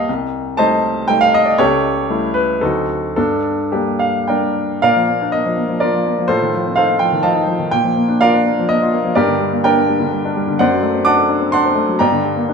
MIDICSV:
0, 0, Header, 1, 2, 480
1, 0, Start_track
1, 0, Key_signature, -2, "minor"
1, 0, Tempo, 507614
1, 75, Time_signature, 3, 2, 24, 8
1, 2474, Tempo, 550459
1, 4394, Key_signature, -2, "major"
1, 4394, Tempo, 502092
1, 4874, Tempo, 478469
1, 12112, End_track
2, 0, Start_track
2, 0, Title_t, "Grand piano"
2, 0, Program_c, 0, 0
2, 0, Control_c, 0, 64, 127
2, 0, Note_on_c, 0, 39, 46
2, 0, Note_on_c, 0, 55, 42
2, 0, Note_on_c, 0, 58, 40
2, 0, Note_on_c, 0, 67, 43
2, 0, Note_on_c, 0, 75, 83
2, 0, Note_on_c, 0, 79, 76
2, 0, Note_on_c, 0, 81, 91
2, 0, Note_on_c, 0, 82, 72
2, 83, Note_on_c, 0, 36, 55
2, 91, Control_c, 0, 64, 0
2, 96, Note_off_c, 0, 79, 0
2, 96, Note_off_c, 0, 82, 0
2, 97, Note_off_c, 0, 75, 0
2, 98, Note_off_c, 0, 55, 0
2, 98, Note_off_c, 0, 58, 0
2, 99, Note_off_c, 0, 39, 0
2, 101, Note_off_c, 0, 81, 0
2, 102, Note_off_c, 0, 67, 0
2, 229, Control_c, 0, 64, 127
2, 540, Note_off_c, 0, 36, 0
2, 542, Note_on_c, 0, 81, 105
2, 551, Note_on_c, 0, 72, 77
2, 553, Note_on_c, 0, 57, 48
2, 555, Note_on_c, 0, 55, 50
2, 556, Note_on_c, 0, 75, 79
2, 561, Note_on_c, 0, 63, 51
2, 993, Note_off_c, 0, 57, 0
2, 994, Note_off_c, 0, 55, 0
2, 996, Note_off_c, 0, 72, 0
2, 997, Note_off_c, 0, 63, 0
2, 999, Note_off_c, 0, 75, 0
2, 1018, Note_on_c, 0, 79, 104
2, 1025, Note_off_c, 0, 81, 0
2, 1030, Note_on_c, 0, 55, 43
2, 1032, Note_on_c, 0, 57, 50
2, 1036, Note_on_c, 0, 63, 51
2, 1142, Note_on_c, 0, 77, 98
2, 1145, Note_off_c, 0, 79, 0
2, 1267, Note_off_c, 0, 77, 0
2, 1272, Note_on_c, 0, 75, 100
2, 1375, Note_on_c, 0, 74, 64
2, 1391, Note_off_c, 0, 75, 0
2, 1473, Note_off_c, 0, 55, 0
2, 1474, Note_off_c, 0, 57, 0
2, 1476, Note_off_c, 0, 63, 0
2, 1497, Note_on_c, 0, 73, 100
2, 1502, Note_off_c, 0, 74, 0
2, 1502, Note_on_c, 0, 37, 65
2, 1505, Note_on_c, 0, 67, 79
2, 1509, Note_on_c, 0, 69, 72
2, 1528, Control_c, 0, 64, 0
2, 1665, Control_c, 0, 64, 127
2, 1966, Note_off_c, 0, 37, 0
2, 1984, Note_on_c, 0, 55, 44
2, 1989, Note_on_c, 0, 57, 45
2, 1992, Note_on_c, 0, 64, 49
2, 2186, Note_off_c, 0, 67, 0
2, 2188, Note_off_c, 0, 69, 0
2, 2212, Note_on_c, 0, 71, 83
2, 2220, Note_off_c, 0, 73, 0
2, 2436, Note_off_c, 0, 55, 0
2, 2439, Note_off_c, 0, 57, 0
2, 2440, Note_off_c, 0, 64, 0
2, 2468, Note_off_c, 0, 71, 0
2, 2471, Note_on_c, 0, 69, 76
2, 2480, Note_on_c, 0, 54, 36
2, 2480, Note_on_c, 0, 63, 59
2, 2483, Note_on_c, 0, 38, 54
2, 2485, Note_on_c, 0, 66, 63
2, 2487, Note_on_c, 0, 60, 41
2, 2491, Control_c, 0, 64, 0
2, 2658, Control_c, 0, 64, 127
2, 2917, Note_off_c, 0, 54, 0
2, 2919, Note_off_c, 0, 63, 0
2, 2921, Note_off_c, 0, 60, 0
2, 2922, Note_off_c, 0, 66, 0
2, 2938, Note_off_c, 0, 69, 0
2, 2940, Note_off_c, 0, 38, 0
2, 2951, Note_on_c, 0, 69, 75
2, 2961, Note_on_c, 0, 43, 50
2, 2961, Note_on_c, 0, 62, 62
2, 2967, Control_c, 0, 64, 0
2, 3128, Control_c, 0, 64, 127
2, 3409, Note_off_c, 0, 62, 0
2, 3428, Note_off_c, 0, 43, 0
2, 3437, Note_off_c, 0, 69, 0
2, 3437, Note_on_c, 0, 67, 59
2, 3444, Note_on_c, 0, 55, 36
2, 3449, Note_on_c, 0, 58, 39
2, 3449, Note_on_c, 0, 62, 44
2, 3675, Note_on_c, 0, 77, 71
2, 3884, Note_off_c, 0, 55, 0
2, 3915, Note_off_c, 0, 77, 0
2, 3921, Note_on_c, 0, 79, 62
2, 3926, Note_off_c, 0, 58, 0
2, 3928, Note_off_c, 0, 62, 0
2, 3934, Note_on_c, 0, 70, 51
2, 3936, Note_on_c, 0, 55, 32
2, 3937, Note_on_c, 0, 74, 49
2, 3939, Note_on_c, 0, 58, 33
2, 3941, Note_on_c, 0, 62, 36
2, 4160, Note_off_c, 0, 67, 0
2, 4370, Note_off_c, 0, 55, 0
2, 4370, Note_off_c, 0, 70, 0
2, 4371, Note_off_c, 0, 58, 0
2, 4372, Note_off_c, 0, 62, 0
2, 4372, Note_off_c, 0, 74, 0
2, 4397, Note_off_c, 0, 79, 0
2, 4398, Note_on_c, 0, 77, 92
2, 4407, Note_on_c, 0, 46, 57
2, 4407, Note_on_c, 0, 70, 64
2, 4411, Note_on_c, 0, 74, 69
2, 4414, Control_c, 0, 64, 0
2, 4528, Note_on_c, 0, 53, 37
2, 4578, Control_c, 0, 64, 127
2, 4652, Note_on_c, 0, 58, 44
2, 4714, Note_off_c, 0, 53, 0
2, 4774, Note_on_c, 0, 62, 43
2, 4835, Note_off_c, 0, 58, 0
2, 4847, Note_off_c, 0, 70, 0
2, 4850, Note_off_c, 0, 74, 0
2, 4875, Note_on_c, 0, 75, 85
2, 4876, Note_off_c, 0, 77, 0
2, 4890, Note_on_c, 0, 58, 47
2, 4958, Note_off_c, 0, 62, 0
2, 5009, Note_on_c, 0, 53, 44
2, 5079, Note_off_c, 0, 58, 0
2, 5123, Note_on_c, 0, 58, 43
2, 5198, Note_off_c, 0, 53, 0
2, 5239, Note_on_c, 0, 53, 44
2, 5316, Note_off_c, 0, 58, 0
2, 5357, Note_on_c, 0, 74, 80
2, 5363, Note_on_c, 0, 70, 59
2, 5364, Note_off_c, 0, 75, 0
2, 5369, Note_on_c, 0, 58, 44
2, 5373, Note_on_c, 0, 65, 58
2, 5436, Note_off_c, 0, 53, 0
2, 5495, Note_on_c, 0, 53, 49
2, 5561, Note_off_c, 0, 58, 0
2, 5619, Note_on_c, 0, 58, 47
2, 5685, Note_off_c, 0, 53, 0
2, 5742, Note_on_c, 0, 53, 42
2, 5806, Note_off_c, 0, 58, 0
2, 5814, Note_off_c, 0, 70, 0
2, 5815, Note_off_c, 0, 46, 0
2, 5820, Note_off_c, 0, 65, 0
2, 5834, Note_on_c, 0, 72, 92
2, 5845, Note_off_c, 0, 74, 0
2, 5845, Note_on_c, 0, 45, 57
2, 5845, Note_on_c, 0, 65, 60
2, 5846, Note_on_c, 0, 69, 60
2, 5856, Note_off_c, 0, 53, 0
2, 5863, Control_c, 0, 64, 0
2, 5972, Note_on_c, 0, 51, 36
2, 6047, Control_c, 0, 64, 127
2, 6095, Note_on_c, 0, 53, 43
2, 6163, Note_off_c, 0, 51, 0
2, 6221, Note_on_c, 0, 60, 46
2, 6285, Note_off_c, 0, 53, 0
2, 6295, Note_off_c, 0, 65, 0
2, 6295, Note_off_c, 0, 69, 0
2, 6314, Note_off_c, 0, 72, 0
2, 6314, Note_on_c, 0, 77, 83
2, 6329, Note_on_c, 0, 72, 69
2, 6330, Note_on_c, 0, 69, 65
2, 6331, Note_on_c, 0, 63, 46
2, 6408, Note_off_c, 0, 60, 0
2, 6451, Note_on_c, 0, 60, 39
2, 6522, Note_off_c, 0, 63, 0
2, 6552, Note_off_c, 0, 69, 0
2, 6552, Note_off_c, 0, 72, 0
2, 6552, Note_on_c, 0, 79, 86
2, 6561, Note_off_c, 0, 77, 0
2, 6561, Note_on_c, 0, 53, 40
2, 6641, Note_off_c, 0, 60, 0
2, 6682, Note_on_c, 0, 51, 50
2, 6755, Note_off_c, 0, 53, 0
2, 6787, Note_on_c, 0, 81, 87
2, 6793, Note_on_c, 0, 53, 47
2, 6794, Note_on_c, 0, 75, 59
2, 6794, Note_on_c, 0, 77, 56
2, 6798, Note_off_c, 0, 79, 0
2, 6875, Note_off_c, 0, 51, 0
2, 6908, Note_on_c, 0, 63, 46
2, 6990, Note_off_c, 0, 53, 0
2, 7031, Note_on_c, 0, 53, 51
2, 7109, Note_off_c, 0, 63, 0
2, 7155, Note_on_c, 0, 51, 40
2, 7231, Note_off_c, 0, 53, 0
2, 7244, Note_off_c, 0, 45, 0
2, 7245, Note_off_c, 0, 77, 0
2, 7246, Note_off_c, 0, 75, 0
2, 7276, Note_off_c, 0, 81, 0
2, 7276, Note_on_c, 0, 79, 97
2, 7281, Note_off_c, 0, 51, 0
2, 7285, Note_on_c, 0, 46, 57
2, 7302, Control_c, 0, 64, 0
2, 7399, Note_on_c, 0, 53, 34
2, 7439, Control_c, 0, 64, 127
2, 7523, Note_on_c, 0, 58, 45
2, 7597, Note_off_c, 0, 53, 0
2, 7646, Note_on_c, 0, 62, 43
2, 7721, Note_off_c, 0, 58, 0
2, 7767, Note_off_c, 0, 79, 0
2, 7769, Note_on_c, 0, 77, 98
2, 7775, Note_on_c, 0, 65, 54
2, 7777, Note_on_c, 0, 70, 67
2, 7777, Note_on_c, 0, 74, 67
2, 7843, Note_off_c, 0, 62, 0
2, 7902, Note_on_c, 0, 62, 48
2, 7968, Note_off_c, 0, 65, 0
2, 8023, Note_on_c, 0, 58, 43
2, 8091, Note_off_c, 0, 62, 0
2, 8156, Note_on_c, 0, 53, 48
2, 8210, Note_off_c, 0, 58, 0
2, 8222, Note_off_c, 0, 70, 0
2, 8222, Note_off_c, 0, 74, 0
2, 8252, Note_off_c, 0, 77, 0
2, 8252, Note_on_c, 0, 75, 94
2, 8264, Note_on_c, 0, 58, 47
2, 8335, Note_off_c, 0, 53, 0
2, 8384, Note_on_c, 0, 65, 51
2, 8447, Note_off_c, 0, 58, 0
2, 8502, Note_on_c, 0, 58, 50
2, 8564, Note_off_c, 0, 65, 0
2, 8605, Note_on_c, 0, 53, 42
2, 8680, Note_off_c, 0, 46, 0
2, 8681, Note_off_c, 0, 58, 0
2, 8719, Note_on_c, 0, 74, 84
2, 8720, Note_off_c, 0, 75, 0
2, 8721, Note_off_c, 0, 53, 0
2, 8729, Note_on_c, 0, 67, 72
2, 8729, Note_on_c, 0, 70, 72
2, 8730, Note_on_c, 0, 43, 63
2, 8735, Control_c, 0, 64, 0
2, 8844, Note_on_c, 0, 50, 39
2, 8870, Control_c, 0, 64, 127
2, 8957, Note_on_c, 0, 55, 45
2, 9029, Note_off_c, 0, 50, 0
2, 9087, Note_on_c, 0, 58, 49
2, 9146, Note_off_c, 0, 55, 0
2, 9165, Note_off_c, 0, 67, 0
2, 9165, Note_off_c, 0, 70, 0
2, 9193, Note_off_c, 0, 74, 0
2, 9209, Note_on_c, 0, 79, 91
2, 9216, Note_on_c, 0, 70, 72
2, 9217, Note_on_c, 0, 74, 68
2, 9220, Note_on_c, 0, 62, 53
2, 9274, Note_off_c, 0, 58, 0
2, 9337, Note_on_c, 0, 58, 49
2, 9401, Note_off_c, 0, 62, 0
2, 9432, Note_off_c, 0, 70, 0
2, 9432, Note_off_c, 0, 74, 0
2, 9444, Note_off_c, 0, 79, 0
2, 9453, Note_on_c, 0, 55, 49
2, 9520, Note_off_c, 0, 58, 0
2, 9567, Note_on_c, 0, 50, 48
2, 9637, Note_off_c, 0, 55, 0
2, 9693, Note_on_c, 0, 55, 50
2, 9752, Note_off_c, 0, 50, 0
2, 9821, Note_on_c, 0, 62, 49
2, 9873, Note_off_c, 0, 55, 0
2, 9928, Note_on_c, 0, 55, 52
2, 9996, Note_off_c, 0, 62, 0
2, 10048, Note_on_c, 0, 50, 48
2, 10109, Note_off_c, 0, 55, 0
2, 10113, Note_off_c, 0, 43, 0
2, 10158, Note_off_c, 0, 50, 0
2, 10163, Note_on_c, 0, 78, 93
2, 10166, Control_c, 0, 64, 0
2, 10174, Note_on_c, 0, 42, 71
2, 10175, Note_on_c, 0, 72, 67
2, 10176, Note_on_c, 0, 74, 71
2, 10278, Note_on_c, 0, 54, 40
2, 10346, Control_c, 0, 64, 127
2, 10399, Note_on_c, 0, 57, 48
2, 10462, Note_off_c, 0, 54, 0
2, 10514, Note_on_c, 0, 60, 51
2, 10582, Note_off_c, 0, 57, 0
2, 10604, Note_off_c, 0, 72, 0
2, 10604, Note_off_c, 0, 74, 0
2, 10618, Note_off_c, 0, 78, 0
2, 10618, Note_on_c, 0, 86, 111
2, 10632, Note_on_c, 0, 62, 56
2, 10633, Note_on_c, 0, 81, 79
2, 10634, Note_on_c, 0, 78, 81
2, 10699, Note_off_c, 0, 60, 0
2, 10748, Note_on_c, 0, 69, 51
2, 10819, Note_off_c, 0, 62, 0
2, 10867, Note_on_c, 0, 62, 52
2, 10937, Note_off_c, 0, 69, 0
2, 10974, Note_on_c, 0, 60, 47
2, 11057, Note_off_c, 0, 62, 0
2, 11075, Note_off_c, 0, 78, 0
2, 11075, Note_off_c, 0, 81, 0
2, 11095, Note_on_c, 0, 84, 109
2, 11101, Note_off_c, 0, 86, 0
2, 11107, Note_on_c, 0, 62, 52
2, 11109, Note_on_c, 0, 81, 74
2, 11110, Note_on_c, 0, 78, 74
2, 11172, Note_off_c, 0, 60, 0
2, 11228, Note_on_c, 0, 60, 52
2, 11299, Note_off_c, 0, 62, 0
2, 11328, Note_on_c, 0, 57, 53
2, 11420, Note_off_c, 0, 60, 0
2, 11458, Note_on_c, 0, 54, 47
2, 11530, Note_off_c, 0, 57, 0
2, 11556, Note_off_c, 0, 81, 0
2, 11557, Note_off_c, 0, 78, 0
2, 11560, Note_off_c, 0, 42, 0
2, 11565, Note_on_c, 0, 82, 89
2, 11574, Note_on_c, 0, 79, 76
2, 11580, Note_on_c, 0, 43, 65
2, 11582, Note_on_c, 0, 74, 63
2, 11583, Note_off_c, 0, 54, 0
2, 11583, Note_off_c, 0, 84, 0
2, 11602, Control_c, 0, 64, 0
2, 11697, Note_on_c, 0, 50, 45
2, 11747, Control_c, 0, 64, 127
2, 11818, Note_on_c, 0, 55, 45
2, 11896, Note_off_c, 0, 50, 0
2, 11938, Note_on_c, 0, 58, 50
2, 12017, Note_off_c, 0, 55, 0
2, 12066, Note_on_c, 0, 62, 52
2, 12112, Note_off_c, 0, 43, 0
2, 12112, Note_off_c, 0, 58, 0
2, 12112, Note_off_c, 0, 62, 0
2, 12112, Note_off_c, 0, 74, 0
2, 12112, Note_off_c, 0, 79, 0
2, 12112, Note_off_c, 0, 82, 0
2, 12112, End_track
0, 0, End_of_file